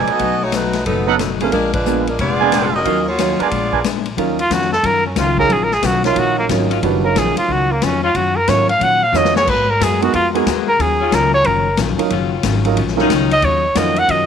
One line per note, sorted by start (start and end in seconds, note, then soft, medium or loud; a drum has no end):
0.00 0.37 D#4 medium
0.00 0.37 A4 medium
0.00 0.37 B4 medium
0.00 0.09 D5 medium
0.00 0.37 G#5 medium
0.07 0.42 B3 medium
0.07 0.42 F#4 medium
0.07 0.43 A4 medium
0.07 0.43 D#5 medium
0.07 muted upright bass stroke soft
0.07 ride soft
0.19 0.83 B1 medium
0.19 0.42 B2 soft
0.19 0.43 F#3 medium
0.19 0.43 A3 soft
0.19 0.43 D#4 medium
0.19 kick soft
0.19 ride medium
0.43 0.53 A3 medium
0.43 0.53 D#4 medium
0.43 0.53 F#4 medium
0.43 0.54 C#5 medium
0.52 0.76 B2 medium
0.52 0.76 F#3 medium
0.52 0.87 A3 medium
0.52 0.76 A3 medium
0.52 0.84 D#4 medium
0.52 0.77 D#4 medium
0.52 0.87 F#4 medium
0.52 0.87 B4 medium
0.52 snare medium
0.52 hi-hat pedal medium
0.52 ride medium
0.73 snare soft
0.73 ride soft
0.85 1.49 F#1 medium
0.85 1.09 B2 soft
0.85 1.17 F#3 medium
0.85 1.10 F#3 soft
0.85 1.10 A3 medium
0.85 1.17 B3 medium
0.85 1.17 D#4 medium
0.85 1.10 D#4 medium
0.85 1.17 A4 medium
0.85 kick soft
0.85 ride medium
1.06 1.18 F#3 medium
1.06 1.18 B3 medium
1.06 1.18 C#4 medium
1.06 1.15 D#4 loud
1.06 1.18 D#4 medium
1.06 1.15 A4 medium
1.06 1.18 A4 medium
1.06 1.15 B4 medium
1.06 1.15 F#5 loud
1.19 1.42 B2 medium
1.19 1.43 F#3 medium
1.19 1.43 A3 medium
1.19 1.43 D#4 medium
1.19 snare medium
1.19 hi-hat pedal medium
1.19 ride medium
1.40 1.52 F3 medium
1.40 1.52 G#3 medium
1.40 1.52 A3 medium
1.40 1.52 B3 soft
1.40 1.52 C#4 medium
1.40 1.52 D4 soft
1.40 1.52 F4 medium
1.40 1.52 G#4 medium
1.40 1.52 A#4 medium
1.40 ride soft
1.52 2.15 A#1 medium
1.52 1.75 A#2 soft
1.52 1.72 G#3 medium
1.52 1.75 G#3 soft
1.52 1.76 B3 medium
1.52 1.72 D4 medium
1.52 1.76 D4 soft
1.52 1.72 F4 medium
1.52 1.72 A#4 medium
1.52 kick soft
1.52 ride medium
1.73 2.05 G#3 medium
1.73 2.04 D4 medium
1.73 2.04 F4 medium
1.73 2.05 B4 medium
1.73 kick medium
1.73 ride medium
1.85 2.08 A#2 medium
1.85 2.05 G#3 soft
1.85 2.08 G#3 medium
1.85 2.05 B3 soft
1.85 2.08 B3 medium
1.85 2.05 D4 soft
1.85 2.09 D4 medium
1.85 2.05 F4 soft
1.85 2.05 A#4 medium
1.85 hi-hat pedal medium
2.07 2.19 G#3 medium
2.07 2.19 D4 medium
2.07 2.19 F4 medium
2.07 2.19 A#4 medium
2.07 ride soft
2.19 2.82 F1 medium
2.19 2.41 A#2 soft
2.19 2.42 G#3 soft
2.19 2.70 B3 medium
2.19 2.42 B3 medium
2.19 2.43 D4 soft
2.19 2.70 F4 medium
2.19 2.70 G#4 medium
2.19 2.70 D5 loud
2.19 kick soft
2.19 ride medium
2.39 2.51 G#3 medium
2.39 2.51 B3 medium
2.39 2.82 D4 loud
2.39 2.51 D4 medium
2.39 2.52 F4 medium
2.39 2.52 G#4 medium
2.39 2.82 A#4 medium
2.39 2.82 B4 medium
2.39 2.82 G#5 loud
2.52 2.75 A#2 medium
2.52 2.75 G#3 medium
2.52 2.75 B3 medium
2.52 2.75 D4 medium
2.52 snare medium
2.52 hi-hat pedal soft
2.52 ride medium
2.75 3.07 C#4 medium
2.75 3.07 F#4 medium
2.75 3.07 A#4 medium
2.75 3.08 D#5 medium
2.84 3.36 D#2 medium
2.84 3.08 D#3 soft
2.84 3.05 F#3 medium
2.84 3.08 F#3 soft
2.84 3.05 C#4 medium
2.84 3.09 C#4 soft
2.84 2.99 D#4 medium
2.84 3.05 D#4 soft
2.84 3.05 F4 soft
2.84 3.09 F4 soft
2.84 2.99 F#4 medium
2.84 3.05 A#4 medium
2.84 2.99 C#5 medium
2.84 2.99 F5 medium
2.84 kick soft
2.84 ride medium
3.08 3.38 A#3 medium
3.08 3.38 F4 medium
3.08 3.38 F#4 medium
3.08 3.38 C#5 medium
3.18 3.41 D#3 soft
3.18 3.41 F#3 medium
3.18 3.38 F#3 soft
3.18 3.41 C#4 medium
3.18 3.38 C#4 soft
3.18 3.38 D#4 soft
3.18 3.41 F4 medium
3.18 3.39 F4 soft
3.18 3.39 C#5 medium
3.18 snare medium
3.18 hi-hat pedal medium
3.18 ride medium
3.39 3.86 B3 medium
3.39 3.47 D4 medium
3.39 3.86 F4 medium
3.39 3.86 G#4 medium
3.39 3.47 A#4 medium
3.39 3.47 B4 medium
3.39 3.85 D5 medium
3.39 3.47 G#5 medium
3.39 muted upright bass stroke soft
3.39 ride soft
3.51 4.14 A#1 medium
3.51 3.74 A#2 soft
3.51 3.74 G#3 soft
3.51 3.74 B3 soft
3.51 3.75 D4 soft
3.51 kick soft
3.51 ride medium
3.72 3.80 D4 medium
3.72 3.80 A#4 medium
3.72 3.80 B4 medium
3.72 3.80 G#5 medium
3.72 kick soft
3.84 4.07 A#2 medium
3.84 4.07 G#3 medium
3.84 4.07 B3 medium
3.84 4.08 D4 medium
3.84 snare medium
3.84 hi-hat pedal medium
3.84 ride medium
4.05 ride soft
4.17 4.49 D#2 medium
4.17 4.39 D#3 soft
4.17 4.36 F#3 medium
4.17 4.40 F#3 soft
4.17 4.37 C#4 medium
4.17 4.40 C#4 medium
4.17 4.37 D#4 medium
4.17 4.40 F4 medium
4.17 4.37 F4 medium
4.17 4.37 A#4 medium
4.17 kick soft
4.17 ride medium
4.39 4.54 F4 medium
4.39 ride soft
4.50 4.83 F2 medium
4.50 4.73 D#3 medium
4.50 4.73 F#3 medium
4.50 4.73 C#4 medium
4.50 4.74 F4 medium
4.50 4.72 F#4 medium
4.50 kick soft
4.50 snare medium
4.50 hi-hat pedal medium
4.50 ride medium
4.61 snare soft
4.73 4.87 A4 medium
4.73 snare soft
4.83 5.15 F#2 medium
4.83 5.06 D#3 soft
4.83 5.06 F#3 soft
4.83 5.07 C#4 soft
4.83 5.07 F4 soft
4.83 5.06 A#4 medium
4.83 kick soft
4.83 ride medium
5.06 5.20 C#4 soft
5.15 5.48 C#2 medium
5.15 5.39 D#3 medium
5.15 5.67 D#3 medium
5.15 5.39 F#3 medium
5.15 5.67 F#3 medium
5.15 5.39 C#4 medium
5.15 5.67 C#4 medium
5.15 5.67 F4 medium
5.15 5.39 F4 medium
5.15 kick soft
5.15 snare medium
5.15 hi-hat pedal medium
5.15 ride medium
5.38 5.49 F#3 medium
5.38 5.49 C#4 medium
5.38 5.49 D#4 medium
5.38 5.49 F4 medium
5.38 5.49 G#4 medium
5.38 5.54 A#4 loud
5.38 kick soft
5.49 5.82 A#1 medium
5.49 5.72 D#3 soft
5.49 5.72 F#3 soft
5.49 5.72 C#4 medium
5.49 5.73 F4 soft
5.49 5.65 G#4 medium
5.49 kick soft
5.49 ride medium
5.63 5.75 A#4 medium
5.71 5.87 G#4 medium
5.71 snare soft
5.82 6.15 B1 medium
5.82 6.05 D#3 medium
5.82 6.05 F#3 medium
5.82 6.05 C#4 medium
5.82 6.06 F4 medium
5.82 6.05 F#4 medium
5.82 kick soft
5.82 snare medium
5.82 hi-hat pedal medium
5.82 ride medium
6.04 6.47 F#3 medium
6.04 6.47 C#4 medium
6.04 6.47 D#4 medium
6.04 6.20 F4 medium
6.04 6.47 F4 medium
6.04 6.48 A#4 medium
6.04 snare medium
6.04 ride soft
6.15 6.48 A#1 medium
6.15 6.38 D#3 soft
6.15 6.38 F#3 soft
6.15 6.39 C#4 soft
6.15 6.39 F4 medium
6.15 6.38 F#4 medium
6.15 kick soft
6.15 ride medium
6.39 6.45 A#3 medium
6.49 6.81 G#1 medium
6.49 6.71 D#3 medium
6.49 6.72 F#3 medium
6.49 7.00 F#3 medium
6.49 7.00 C#4 medium
6.49 6.72 C#4 medium
6.49 7.00 D#4 medium
6.49 6.72 F4 medium
6.49 7.00 F4 soft
6.49 7.00 A#4 medium
6.49 kick soft
6.49 snare medium
6.49 hi-hat pedal medium
6.49 ride medium
6.69 6.78 D#3 medium
6.69 6.78 F#3 medium
6.69 6.78 C#4 medium
6.69 6.78 F4 medium
6.69 ride soft
6.82 7.15 F#1 medium
6.82 7.04 D#3 soft
6.82 7.05 F#3 medium
6.82 7.02 G3 medium
6.82 7.05 C#4 medium
6.82 7.02 D4 soft
6.82 7.02 E4 soft
6.82 7.06 F4 medium
6.82 7.02 F#4 soft
6.82 7.02 B4 medium
6.82 kick soft
6.82 ride medium
7.04 7.74 F#3 soft
7.04 7.75 C#4 soft
7.04 7.75 D#4 soft
7.04 7.75 F4 soft
7.04 7.19 A#4 medium
7.04 7.75 A#4 soft
7.15 7.35 A#1 medium
7.15 7.38 D#3 medium
7.15 7.38 F#3 medium
7.15 7.38 C#4 medium
7.15 7.38 F4 medium
7.15 7.37 G#4 medium
7.15 kick soft
7.15 snare medium
7.15 hi-hat pedal medium
7.15 ride medium
7.36 7.53 F4 medium
7.36 muted upright bass stroke soft
7.36 ride medium
7.48 7.81 C#2 medium
7.48 7.71 D#3 soft
7.48 7.71 F#3 soft
7.48 7.72 C#4 medium
7.48 7.72 F4 medium
7.48 7.73 F#4 medium
7.48 kick soft
7.72 7.85 A#3 medium
7.82 8.14 F2 medium
7.82 8.04 D#3 medium
7.82 8.05 F#3 medium
7.82 8.05 C#4 medium
7.82 8.03 C#4 medium
7.82 8.05 F4 medium
7.82 kick soft
7.82 snare medium
7.82 hi-hat pedal soft
7.82 ride medium
8.03 8.11 D#3 medium
8.03 8.12 F#3 medium
8.03 8.11 C#4 medium
8.03 8.17 F4 medium
8.03 8.11 F4 medium
8.15 8.47 F#2 medium
8.15 8.37 D#3 soft
8.15 8.38 F#3 soft
8.15 8.38 C#4 soft
8.15 8.39 F4 medium
8.15 8.37 F#4 medium
8.15 kick soft
8.15 ride medium
8.36 8.50 A#4 medium
8.47 8.80 G#2 medium
8.47 8.70 D#3 medium
8.47 8.67 F#3 soft
8.47 8.70 F#3 medium
8.47 8.67 C#4 soft
8.47 8.71 C#4 medium
8.47 8.67 D#4 soft
8.47 8.67 F4 soft
8.47 8.71 F4 medium
8.47 8.67 A#4 medium
8.47 8.69 C#5 medium
8.47 kick soft
8.47 snare medium
8.47 hi-hat pedal medium
8.47 ride medium
8.69 8.84 F5 loud
8.69 ride soft
8.79 9.12 A#2 medium
8.79 9.02 D#3 medium
8.79 9.03 F#3 soft
8.79 9.03 C#4 medium
8.79 9.04 F4 soft
8.79 9.04 F#5 loud
8.79 kick soft
8.79 ride medium
9.03 9.18 F5 medium
9.12 9.45 F2 medium
9.12 9.35 D#3 medium
9.12 9.36 F#3 medium
9.12 9.33 F#3 medium
9.12 9.36 C#4 medium
9.12 9.33 C#4 medium
9.12 9.33 D#4 medium
9.12 9.36 F4 medium
9.12 9.33 F4 medium
9.12 9.34 C#5 medium
9.12 snare soft
9.12 hi-hat pedal medium
9.17 9.36 D#5 medium
9.25 snare medium
9.34 9.43 F#3 medium
9.34 9.43 A#3 medium
9.34 9.43 B3 medium
9.34 9.43 G#4 medium
9.34 9.51 C#5 medium
9.34 snare medium
9.45 9.79 G#2 medium
9.45 9.68 G#3 soft
9.45 9.69 B3 medium
9.45 9.69 F#4 soft
9.45 9.69 A#4 medium
9.45 kick medium
9.45 crash medium
9.49 9.71 B4 medium
9.70 9.85 A#4 medium
9.80 10.12 F#2 medium
9.80 10.02 G#3 medium
9.80 10.02 B3 medium
9.80 10.03 F#4 medium
9.80 10.03 G#4 medium
9.80 10.03 A#4 medium
9.80 kick soft
9.80 snare medium
9.80 hi-hat pedal medium
9.80 ride medium
10.01 10.11 G#3 medium
10.01 10.12 B3 medium
10.01 10.12 D#4 medium
10.01 10.12 F#4 medium
10.01 10.13 F#4 medium
10.01 10.12 A#4 medium
10.01 ride soft
10.13 10.45 F2 medium
10.13 10.35 G#3 soft
10.13 10.35 B3 medium
10.13 10.27 F4 medium
10.13 10.36 F#4 medium
10.13 10.36 A#4 medium
10.13 kick soft
10.13 ride medium
10.34 10.77 F#3 medium
10.34 10.45 G#3 medium
10.34 10.76 A#3 medium
10.34 10.77 B3 medium
10.34 10.45 B3 medium
10.34 10.45 D#4 medium
10.34 10.45 F#4 medium
10.34 10.77 G#4 medium
10.34 10.45 A#4 medium
10.34 ride soft
10.46 10.78 D#2 medium
10.46 10.68 G#3 medium
10.46 10.69 B3 medium
10.46 10.69 F#4 medium
10.46 10.69 A#4 medium
10.46 kick soft
10.46 snare medium
10.46 hi-hat pedal medium
10.46 ride medium
10.68 10.82 A#4 medium
10.79 11.11 D#2 medium
10.79 11.01 D#3 soft
10.79 11.02 F#3 medium
10.79 11.02 C#4 soft
10.79 11.02 F4 medium
10.79 11.16 G#4 medium
10.79 kick soft
10.79 ride medium
11.00 11.42 D#3 medium
11.00 11.43 F#3 medium
11.00 11.43 C#4 medium
11.00 11.43 F4 loud
11.11 11.44 C#2 medium
11.11 11.34 D#3 medium
11.11 11.34 F#3 medium
11.11 11.34 C#4 medium
11.11 11.35 F4 medium
11.11 11.33 A#4 medium
11.11 kick soft
11.11 snare medium
11.11 hi-hat pedal medium
11.11 ride medium
11.34 11.47 C#5 loud
11.44 11.77 F#1 medium
11.44 11.67 D#3 medium
11.44 11.68 F#3 soft
11.44 11.68 C#4 medium
11.44 11.68 F4 soft
11.44 11.78 A#4 medium
11.44 kick soft
11.44 ride medium
11.77 11.97 A#1 medium
11.77 12.00 D#3 medium
11.77 12.01 F#3 medium
11.77 12.01 C#4 medium
11.77 12.02 F4 medium
11.77 kick soft
11.77 snare medium
11.77 hi-hat pedal medium
11.77 ride medium
11.98 12.09 F#3 medium
11.98 12.09 C#4 medium
11.98 12.10 D#4 medium
11.98 12.10 F4 medium
11.98 12.10 A#4 medium
11.98 muted upright bass stroke soft
11.98 ride medium
12.10 12.43 F#1 medium
12.10 12.33 D#3 medium
12.10 12.61 D#3 medium
12.10 12.34 F#3 medium
12.10 12.61 F#3 medium
12.10 12.61 C#4 medium
12.10 12.34 C#4 medium
12.10 12.61 F4 medium
12.10 12.34 F4 medium
12.10 kick soft
12.10 ride medium
12.43 12.76 G#1 medium
12.43 12.66 D#3 medium
12.43 12.66 F#3 medium
12.43 12.66 C#4 medium
12.43 12.66 F4 medium
12.43 kick soft
12.43 snare medium
12.43 hi-hat pedal medium
12.43 ride medium
12.65 12.76 F#3 medium
12.65 12.76 C#4 medium
12.65 12.76 D#4 medium
12.65 12.76 F4 medium
12.65 12.76 A#4 medium
12.65 ride soft
12.76 13.09 A#1 medium
12.76 12.99 D#3 medium
12.76 13.00 F#3 medium
12.76 13.00 C#4 medium
12.76 13.00 F4 medium
12.76 kick soft
12.76 ride medium
12.88 snare soft
12.96 13.41 D#3 loud
12.96 13.08 F#3 medium
12.96 13.08 C#4 medium
12.96 13.41 C#4 medium
12.96 13.08 D#4 medium
12.96 13.41 D#4 loud
12.96 13.08 F4 medium
12.96 13.08 A#4 medium
12.96 snare soft
13.01 13.42 F#3 medium
13.09 13.42 C#2 medium
13.09 13.32 D#3 medium
13.09 13.32 F#3 medium
13.09 13.32 C#4 medium
13.09 13.33 F4 medium
13.09 kick soft
13.09 snare medium
13.09 hi-hat pedal medium
13.09 ride medium
13.31 13.46 D#5 loud
13.31 ride medium
13.42 13.75 D#2 medium
13.42 13.65 D#3 soft
13.42 13.65 F#3 soft
13.42 13.65 C#4 medium
13.42 13.66 F4 soft
13.42 13.79 C#5 medium
13.42 kick soft
13.42 ride medium
13.75 14.07 F2 medium
13.75 13.98 D#3 medium
13.75 13.98 F#3 medium
13.75 14.25 C#4 soft
13.75 13.98 C#4 medium
13.75 14.25 D#4 soft
13.75 14.26 F4 soft
13.75 13.99 F4 medium
13.75 14.25 F#4 soft
13.75 14.26 A#4 medium
13.75 14.00 D#5 medium
13.75 kick soft
13.75 snare medium
13.75 hi-hat pedal medium
13.75 ride medium
13.96 14.12 F#5 loud
13.96 ride soft
14.08 14.26 F#2 medium
14.08 14.26 D#3 soft
14.08 14.26 F#3 soft
14.08 14.26 C#4 soft
14.08 14.26 F4 medium
14.08 14.26 D#5 medium
14.08 kick soft
14.08 ride medium